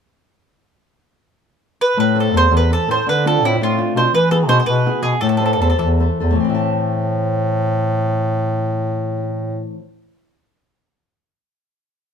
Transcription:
1.81 1.98 B4 medium
1.97 2.35 A2 medium
1.97 2.34 A3 medium
1.97 2.17 B4 medium
2.15 2.33 A4 soft
2.15 2.33 B4 soft
2.15 2.33 C5 soft
2.20 2.37 A4 medium
2.34 2.46 E2 medium
2.34 2.64 A4 soft
2.34 2.64 B4 soft
2.34 2.64 C5 soft
2.34 2.53 C5 medium
2.50 2.75 E2 medium
2.50 2.87 E3 medium
2.57 2.72 B4 medium
2.70 2.87 A4 soft
2.70 2.91 A4 medium
2.70 2.88 B4 soft
2.70 2.87 C5 soft
2.88 3.00 A2 medium
2.88 3.02 A4 soft
2.88 3.03 B4 soft
2.88 3.03 C5 soft
2.88 3.08 C5 medium
3.06 3.44 D3 medium
3.06 3.42 D3 medium
3.06 3.25 B4 medium
3.26 3.42 C4 soft
3.26 3.42 D4 soft
3.26 3.42 F4 soft
3.26 3.44 A4 medium
3.43 3.54 A2 medium
3.43 3.72 C4 soft
3.43 3.72 D4 soft
3.43 3.62 E4 medium
3.43 3.72 F4 soft
3.59 3.83 A2 medium
3.59 3.96 A3 soft
3.63 3.99 F4 medium
3.78 3.95 C4 soft
3.78 3.95 D4 soft
3.78 3.96 F4 soft
3.94 4.06 B2 medium
3.94 4.10 C4 soft
3.94 4.10 D4 soft
3.94 4.11 F4 soft
3.94 4.13 C5 medium
4.14 4.49 E3 medium
4.14 4.31 B4 medium
4.31 4.47 B3 soft
4.31 4.48 E4 soft
4.31 4.48 G#4 soft
4.31 4.36 A4 medium
4.48 4.60 B2 medium
4.48 4.78 B3 soft
4.48 4.78 E4 soft
4.48 4.78 G#4 soft
4.48 4.59 C5 medium
4.60 4.66 C5 medium
4.65 5.02 B2 soft
4.65 4.90 B2 medium
4.65 5.01 B4 medium
4.86 5.01 B3 soft
4.86 5.02 E4 soft
4.86 5.02 G#4 medium
5.02 5.14 B2 medium
5.02 5.18 B3 soft
5.02 5.18 E4 soft
5.02 5.20 G#4 medium
5.02 5.18 G#4 soft
5.21 5.62 A2 medium
5.21 5.40 A3 medium
5.21 5.28 A4 medium
5.29 5.36 A4 medium
5.37 5.44 A4 medium
5.37 5.58 A4 soft
5.37 5.59 B4 soft
5.37 5.60 C5 soft
5.46 5.52 A4 medium
5.53 5.60 A4 medium
5.60 5.73 E2 medium
5.60 5.93 A4 soft
5.60 5.69 A4 medium
5.60 5.94 B4 soft
5.60 5.94 C5 soft
5.70 5.78 A4 medium
5.78 6.07 E2 medium
5.78 6.20 E3 medium
5.78 5.88 A4 soft
6.00 6.19 A4 soft
6.00 6.20 B4 soft
6.00 6.20 C5 soft
6.20 6.35 E2 medium
6.20 6.38 A4 soft
6.20 6.39 B4 soft
6.20 6.39 C5 soft
6.31 9.74 A2 medium
6.35 9.79 E3 soft
6.40 9.71 A2 medium
6.40 9.84 C4 soft
6.44 9.88 B4 soft
6.49 9.93 E5 soft
6.55 9.98 A5 soft

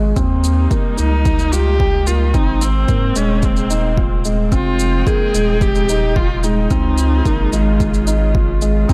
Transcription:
0.00 0.14 G#1 medium
0.00 0.14 C#3 medium
0.00 0.12 F3 medium
0.00 0.13 G#3 medium
0.00 0.15 G#3 medium
0.16 0.68 D#2 medium
0.16 2.33 G3 medium
0.16 2.32 A#3 medium
0.16 0.65 C4 medium
0.16 2.32 D#4 medium
0.16 kick medium
0.16 shaker soft
0.44 shaker medium
0.71 0.95 A#3 medium
0.71 kick medium
0.71 shaker soft
0.98 2.36 C#2 medium
0.98 1.46 A#3 medium
0.98 1.54 D#4 medium
0.98 shaker medium
1.25 kick loud
1.25 shaker soft
1.39 shaker soft
1.52 1.77 F4 medium
1.52 2.08 G4 loud
1.52 shaker medium
1.80 2.04 G4 medium
1.80 kick medium
2.07 2.31 A#3 medium
2.07 2.36 F4 medium
2.07 shaker medium
2.34 2.85 G#1 medium
2.34 4.51 G#3 medium
2.34 4.51 A#3 medium
2.34 2.83 C4 medium
2.34 4.50 C4 medium
2.34 2.63 D#4 medium
2.34 kick medium
2.34 shaker soft
2.61 3.18 C4 medium
2.61 shaker medium
2.88 3.12 G#2 medium
2.88 3.13 A#3 medium
2.88 kick medium
2.88 shaker soft
3.16 4.49 D#1 medium
3.16 3.65 G#3 medium
3.16 3.46 C#4 medium
3.16 shaker medium
3.42 3.99 C4 medium
3.42 kick medium
3.42 shaker soft
3.56 shaker soft
3.70 3.95 D#4 medium
3.70 shaker medium
3.97 4.22 F4 medium
3.97 kick medium
4.25 4.50 G#3 medium
4.25 shaker medium
4.51 5.03 F1 medium
4.51 6.68 F3 medium
4.51 6.68 G#3 medium
4.51 6.68 C4 medium
4.51 5.01 C4 medium
4.51 6.68 D#4 medium
4.51 5.08 F4 medium
4.51 6.68 G5 medium
4.51 kick medium
4.51 shaker soft
4.79 shaker medium
5.06 5.31 A#3 medium
5.06 5.63 G#4 medium
5.06 kick medium
5.06 shaker soft
5.35 6.67 D#1 medium
5.35 5.83 G#3 medium
5.35 shaker medium
5.61 6.18 G4 medium
5.61 kick medium
5.61 shaker soft
5.75 shaker soft
5.89 6.14 D#4 medium
5.89 shaker medium
6.16 6.45 F4 medium
6.16 6.41 F4 medium
6.16 kick medium
6.44 6.68 G#3 medium
6.44 8.07 D#4 medium
6.44 shaker medium
6.70 7.22 C#2 medium
6.70 8.86 C#3 medium
6.70 8.86 G#3 medium
6.70 7.19 C4 medium
6.70 8.86 F4 medium
6.70 kick medium
6.70 shaker soft
6.98 shaker medium
7.25 7.48 G#1 medium
7.25 7.50 A#3 medium
7.25 kick medium
7.25 shaker soft
7.53 8.86 G#1 medium
7.53 8.01 G#3 medium
7.53 shaker medium
7.80 kick medium
7.80 shaker soft
7.94 shaker soft
8.07 8.31 D#4 medium
8.07 shaker medium
8.35 8.59 F4 medium
8.35 kick medium
8.62 8.86 G#3 medium
8.62 shaker medium
8.89 8.93 D#2 medium
8.89 8.93 G3 medium
8.89 8.93 A#3 medium
8.89 8.93 C4 medium
8.89 8.93 D#4 medium
8.89 kick medium
8.89 shaker soft

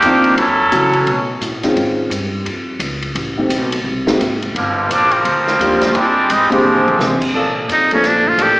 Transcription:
0.00 0.37 F2 loud
0.00 0.35 D#3 medium
0.00 0.39 D#3 medium
0.00 0.35 A#3 medium
0.00 0.39 A#3 medium
0.00 0.35 D4 medium
0.00 0.35 G4 loud
0.00 hi-hat pedal medium
0.00 ride medium
0.04 0.39 C4 medium
0.04 0.39 D4 medium
0.04 0.39 F4 medium
0.24 ride soft
0.38 0.71 F#2 medium
0.38 1.39 F#3 medium
0.38 1.39 C#4 medium
0.38 1.04 E4 medium
0.38 1.39 A4 loud
0.38 ride medium
0.72 1.06 C#3 medium
0.72 1.07 E3 medium
0.72 1.07 F#3 soft
0.72 1.07 A3 soft
0.72 1.08 C#4 soft
0.72 1.08 F#4 medium
0.72 hi-hat pedal medium
0.72 ride medium
0.93 ride soft
1.07 1.40 B2 medium
1.07 ride medium
1.41 1.75 A2 medium
1.41 hi-hat pedal medium
1.41 ride medium
1.63 2.10 D#3 medium
1.63 2.10 G#3 medium
1.63 2.10 C4 medium
1.63 2.10 C#4 medium
1.63 2.10 F4 medium
1.63 snare soft
1.63 ride soft
1.75 2.09 G#2 medium
1.75 ride medium
2.10 2.45 G2 medium
2.10 hi-hat pedal medium
2.10 ride medium
2.45 2.79 F2 medium
2.45 ride medium
2.79 3.14 C#2 medium
2.79 hi-hat pedal medium
2.79 ride medium
3.02 ride soft
3.15 3.49 A1 medium
3.15 ride medium
3.37 3.50 D#3 medium
3.37 3.50 G3 medium
3.37 3.50 A3 medium
3.37 3.50 C4 medium
3.37 3.51 G4 medium
3.49 3.83 B1 medium
3.49 hi-hat pedal medium
3.49 ride medium
3.72 ride medium
3.84 4.18 C2 medium
4.07 4.19 D#3 medium
4.07 4.19 G#3 medium
4.07 4.20 A#3 medium
4.07 4.19 C4 medium
4.07 4.20 F#4 medium
4.07 snare medium
4.19 4.54 G#1 medium
4.19 hi-hat pedal medium
4.19 ride medium
4.42 ride soft
4.55 4.88 G1 medium
4.55 4.88 D3 medium
4.55 4.88 F3 medium
4.55 4.88 G3 medium
4.55 4.88 A#3 medium
4.55 ride medium
4.89 5.23 A#1 medium
4.89 5.11 F3 medium
4.89 5.11 G3 medium
4.89 5.11 A#3 medium
4.89 5.13 D4 medium
4.89 hi-hat pedal medium
4.89 ride medium
5.11 5.95 F3 medium
5.11 5.94 G3 medium
5.11 5.95 A#3 medium
5.11 5.94 C4 medium
5.11 ride soft
5.25 5.59 D2 medium
5.25 ride medium
5.47 snare soft
5.59 5.93 D#2 loud
5.59 5.95 F3 medium
5.59 5.95 G3 medium
5.59 5.95 A#3 medium
5.59 5.96 D4 medium
5.59 5.95 G4 medium
5.59 hi-hat pedal medium
5.59 ride medium
5.81 snare soft
5.81 ride medium
5.95 6.28 F2 medium
5.95 6.30 G3 medium
5.95 6.30 G#3 medium
5.95 6.30 C4 medium
5.95 6.30 D4 loud
5.95 ride medium
6.30 6.50 G#2 medium
6.30 6.52 G3 medium
6.30 6.52 G#3 medium
6.30 6.51 C4 medium
6.30 6.53 D#4 loud
6.30 hi-hat pedal medium
6.30 ride medium
6.50 6.96 D3 medium
6.50 7.17 F3 medium
6.50 6.96 G#3 medium
6.50 7.18 G#3 medium
6.50 6.96 A#3 medium
6.50 6.96 C4 medium
6.50 7.17 C4 medium
6.50 7.18 D4 medium
6.50 6.96 G4 medium
6.50 muted upright bass stroke soft
6.50 ride soft
6.64 6.98 A#2 medium
6.64 high tom medium
6.77 high tom medium
6.88 high tom medium
6.99 7.33 C3 medium
6.99 snare medium
6.99 hi-hat pedal medium
7.21 kick medium
7.21 crash medium
7.34 7.68 A#2 medium
7.34 7.86 F3 medium
7.34 7.86 A#3 medium
7.34 7.86 D4 medium
7.34 7.86 A4 medium
7.68 8.02 F2 medium
7.68 7.91 D#4 medium
7.68 hi-hat pedal soft
7.68 ride medium
7.91 8.36 F3 medium
7.91 8.36 A3 medium
7.91 8.37 A#3 medium
7.91 8.08 C#4 medium
7.91 8.37 D4 medium
7.91 8.37 A4 medium
7.91 ride soft
8.04 8.37 A#1 medium
8.04 8.30 D4 medium
8.04 snare soft
8.04 ride medium
8.25 8.44 F4 medium
8.25 kick medium
8.38 8.60 A1 medium
8.38 8.60 F3 medium
8.38 8.60 A#3 medium
8.38 8.60 D4 medium
8.38 8.60 A4 medium
8.38 hi-hat pedal medium
8.38 ride medium
8.42 8.60 G4 medium

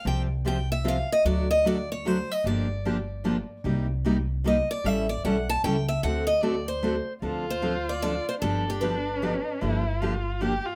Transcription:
0.05 1.01 C2 medium
0.05 0.26 C3 medium
0.05 0.26 F3 medium
0.05 0.27 C4 medium
0.05 0.27 F4 medium
0.05 0.27 G4 medium
0.05 0.22 G5 medium
0.45 0.56 C3 medium
0.45 0.56 F3 medium
0.45 0.57 C4 medium
0.45 0.57 F4 medium
0.45 0.57 G4 medium
0.45 0.70 G5 medium
0.72 0.85 E5 loud
0.84 0.96 C3 loud
0.84 0.96 F3 medium
0.84 0.96 C4 loud
0.84 0.96 F4 loud
0.84 0.96 G4 medium
0.88 1.11 F5 loud
1.12 1.25 D#5 loud
1.25 2.21 D2 medium
1.25 1.46 D3 medium
1.25 1.46 F#3 medium
1.25 1.46 A3 medium
1.25 1.47 D4 medium
1.25 1.47 F#4 medium
1.25 1.49 D5 medium
1.51 1.65 D#5 loud
1.65 1.76 D3 medium
1.65 1.76 F#3 medium
1.65 1.76 A3 medium
1.65 1.77 D4 medium
1.65 1.77 F#4 medium
1.65 1.90 D5 medium
1.92 2.07 C#5 medium
2.05 2.16 D3 medium
2.05 2.17 F#3 medium
2.05 2.16 A3 medium
2.05 2.17 D4 medium
2.05 2.17 F#4 medium
2.05 2.31 C5 medium
2.31 2.45 D#5 loud
2.44 3.40 G1 medium
2.44 2.66 D3 medium
2.44 2.66 F3 medium
2.44 2.66 A#3 medium
2.44 2.67 D4 medium
2.44 2.67 G4 medium
2.44 3.62 D5 medium
2.85 2.96 D3 medium
2.85 2.96 F3 medium
2.85 2.96 A#3 medium
2.85 2.97 D4 medium
2.85 2.97 G4 medium
3.24 3.36 D3 medium
3.24 3.36 F3 medium
3.24 3.36 A#3 loud
3.24 3.36 D4 medium
3.24 3.36 G4 loud
3.64 4.60 C2 medium
3.64 3.86 C3 medium
3.64 3.86 G3 medium
3.64 3.86 A#3 medium
3.64 3.86 D#4 medium
3.64 3.86 G4 medium
4.05 4.16 C3 medium
4.05 4.16 G3 medium
4.05 4.16 A#3 loud
4.05 4.16 D#4 loud
4.05 4.16 G4 medium
4.44 4.55 C3 medium
4.44 4.56 G3 medium
4.44 4.56 A#3 medium
4.44 4.56 D#4 loud
4.44 4.56 G4 loud
4.44 4.70 D#5 medium
4.71 4.86 D5 loud
4.84 5.16 A1 medium
4.84 5.05 E3 medium
4.84 5.05 G3 medium
4.84 5.06 C#4 medium
4.84 5.06 E4 medium
4.84 5.06 A4 medium
4.84 5.09 E5 loud
5.09 5.24 D5 loud
5.24 5.58 B1 medium
5.24 5.35 E3 medium
5.24 5.36 G3 medium
5.24 5.36 C#4 loud
5.24 5.36 E4 loud
5.24 5.36 A4 medium
5.24 5.48 F#5 medium
5.49 5.64 A5 loud
5.64 5.98 C#2 medium
5.64 5.75 E3 medium
5.64 5.76 G3 medium
5.64 5.76 C#4 medium
5.64 5.76 E4 loud
5.64 5.76 A4 loud
5.64 5.88 G5 loud
5.88 6.03 E5 loud
6.03 6.99 D2 medium
6.03 6.25 D3 medium
6.03 6.25 A3 medium
6.03 6.25 C4 medium
6.03 6.25 F#4 medium
6.03 6.25 A4 medium
6.03 6.26 F#5 medium
6.27 6.42 D#5 loud
6.42 6.54 D3 medium
6.42 6.54 A3 loud
6.42 6.54 C4 medium
6.42 6.54 F#4 loud
6.42 6.54 A4 loud
6.42 6.67 D5 medium
6.68 7.12 C5 loud
6.83 6.94 D3 medium
6.83 6.94 A3 loud
6.83 6.95 C4 loud
6.83 6.95 F#4 medium
6.83 6.95 A4 loud
7.22 8.18 D2 medium
7.22 7.44 D3 medium
7.22 7.44 F3 medium
7.22 7.44 C4 medium
7.22 7.44 D4 medium
7.22 8.38 F4 medium
7.22 7.44 A4 medium
7.50 7.91 C5 medium
7.62 7.74 D3 medium
7.62 7.74 F3 medium
7.62 7.74 C4 medium
7.62 7.74 D4 medium
7.62 7.74 A4 medium
7.89 8.01 D5 medium
8.02 8.14 D3 medium
8.02 8.14 F3 medium
8.02 8.14 C4 medium
8.02 8.14 D4 medium
8.02 8.14 A4 medium
8.02 8.25 D5 medium
8.29 8.34 C5 medium
8.41 9.38 G1 medium
8.41 8.63 D3 medium
8.41 8.64 F3 medium
8.41 8.64 B3 medium
8.41 9.62 D4 medium
8.41 8.64 D4 medium
8.41 8.64 G4 medium
8.41 8.69 A4 medium
8.70 8.83 G4 medium
8.81 8.93 D3 medium
8.81 8.93 F3 medium
8.81 8.94 B3 medium
8.81 8.94 D4 medium
8.81 8.94 G4 medium
8.81 9.42 B4 medium
9.22 9.33 D3 medium
9.22 9.33 F3 medium
9.22 9.34 B3 medium
9.22 9.34 D4 medium
9.22 9.34 G4 medium
9.61 10.58 G1 medium
9.61 9.83 D3 medium
9.61 9.83 F3 medium
9.61 9.83 A#3 medium
9.61 9.83 D4 medium
9.61 10.02 E4 medium
9.61 9.83 G4 medium
10.01 10.13 D3 medium
10.01 10.13 F3 medium
10.01 10.13 A#3 medium
10.01 10.13 D4 medium
10.01 10.43 F4 medium
10.01 10.14 G4 medium
10.41 10.52 D3 medium
10.41 10.52 F3 medium
10.41 10.53 A#3 medium
10.41 10.53 D4 medium
10.41 10.67 G4 medium
10.41 10.53 G4 medium
10.66 10.75 F4 medium

